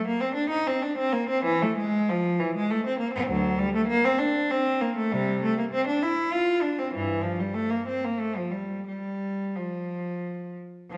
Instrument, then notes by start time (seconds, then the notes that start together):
cello
0.08 A#3
0.21 C4
0.35 D4
0.50 D#4
0.67 C4
0.82 D4
0.98 C4
1.13 A#3
1.29 C4
1.44 E3
1.62 A3
1.78 G#3
2.10 F3
2.40 E3
2.55 G#3
2.71 A3
2.86 C4
2.99 A#3
3.14 C4
3.29 D2 F#3
3.59 G3
3.76 A3
3.88 A#3
4.05 C4
4.19 D4
4.51 C4
4.81 A#3
4.97 A3
5.12 C3 G3
5.43 A3
5.59 A#3
5.73 C4
5.87 D4
6.03 E4
6.33 F4
6.62 D4
6.79 C4
6.93 G2 E3
7.22 F3
7.40 G3
7.54 A3
7.70 A#3
7.88 C4
8.04 A#3
8.20 A3
8.37 F3
8.52 G3
8.87 G3
9.56 F3
10.91 F3